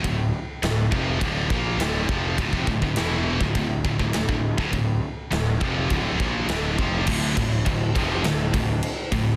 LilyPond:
<<
  \new Staff \with { instrumentName = "Distorted electric guitar" } { \clef bass \time 4/4 \key d \minor \tempo 4 = 102 <d, a,>8 r8 <d, a,>8 <f, c f>8 <d, a, d>8 <bes, f bes>8 <d, a, d>8 <f, c f>8 | <d, a,>16 <f, c>16 <d, a,>16 <d, a,>16 <e, b, e>8. <d, a,>16 <d, a,>8 <d, a,>16 <d, a,>16 <d, a,>16 <d, a,>8 <d, a,>16 | <d, a,>8 r8 <d, a,>8 <f, c f>8 <d, a, d>8 <bes, f bes>8 <d, a, d>8 <f, c f>8 | <d, a, d>8 <d, a,>8 <d, a,>8 <f, c f>8 <d, a,>8 <d, a,>8 r8 <d, a,>8 | }
  \new Staff \with { instrumentName = "Distorted electric guitar" } { \clef bass \time 4/4 \key d \minor <d, a,>8 r8 <d, a,>8 <f, c f>8 <d, a, d>8 <bes, f bes>8 <d, a, d>8 <f, c f>8 | <d, a,>16 <f, c>16 <d, a,>16 <d, a,>16 <e, b, e>8. <d, a,>16 <d, a,>8 <d, a,>16 <d, a,>16 <d, a,>16 <d, a,>8 <d, a,>16 | <d, a,>8 r8 <d, a,>8 <f, c f>8 <d, a, d>8 <bes, f bes>8 <d, a, d>8 <f, c f>8 | <d, a, d>8 <d, a,>8 <d, a,>8 <f, c f>8 <d, a,>8 <d, a,>8 r8 <d, a,>8 | }
  \new Staff \with { instrumentName = "Overdriven electric guitar" } { \clef bass \time 4/4 \key d \minor r1 | r1 | r1 | <d, a, d>8 <d, a,>8 <d, a,>8 <f, c f>8 <d, a,>8 <d, a,>8 r8 <d, a,>8 | }
  \new Staff \with { instrumentName = "Picked electric bass" } { \clef bass \time 4/4 \key d \minor d,,8 r8 d,,8 f,,8 d,,8 bes,,8 d,,8 f,,8 | d,,16 f,,16 d,,16 d,,16 e,,8. d,,16 d,,8 d,,16 d,,16 d,,16 d,,8 d,,16 | d,,8 r8 d,,8 f,,8 d,,8 bes,,8 d,,8 f,,8 | d,,8 d,,8 d,,8 f,,8 d,,8 d,,8 r8 d,,8 | }
  \new DrumStaff \with { instrumentName = "Drums" } \drummode { \time 4/4 <bd rb>4 <rb sn>8 bd8 <bd rb>8 bd8 <rb sn>8 bd8 | <bd rb>16 bd16 bd16 bd16 <rb sn>8. bd16 <bd rb>8 bd16 bd16 <rb sn>16 bd8 bd16 | <bd rb>4 <rb sn>8 bd8 <bd rb>8 bd8 <rb sn>8 bd8 | <cymc bd>8 <bd cymr>8 <bd cymr>8 <bd cymr>8 <cymr sn>8 <bd cymr>8 cymr8 <bd cymr>8 | }
>>